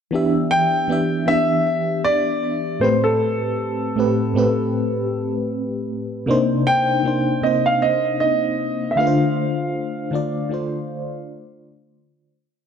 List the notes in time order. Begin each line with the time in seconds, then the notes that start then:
0.11 E3 B3 D4 G4
0.15 E5
0.51 G5
0.88 E3 B3 D4 G4
0.92 E5
1.26 E3 B3 D4 G4 E5
1.30 E5
2.04 D5
2.80 A2 A3 C4 G4 C5
2.84 B4
3.04 A4
3.95 A2 A3 C4 G4
4.00 B4
4.34 A2 A3 C4 G4
4.38 B4
6.26 C3 A#3 D4 D#4
6.31 C5
6.67 G5
7.03 C3 A#3 D4 D#4
7.08 C5
7.42 C3 A#3 C4 D#4 D#5
7.46 C5
7.66 F5
7.82 D#5
8.20 D#5
8.91 E5
8.96 D3 A3 D4 F4 F5
9.00 B4
9.07 C5
10.11 D3 A3 D4 F4
10.15 D5
10.49 D3 A3 D4 F4
10.54 C5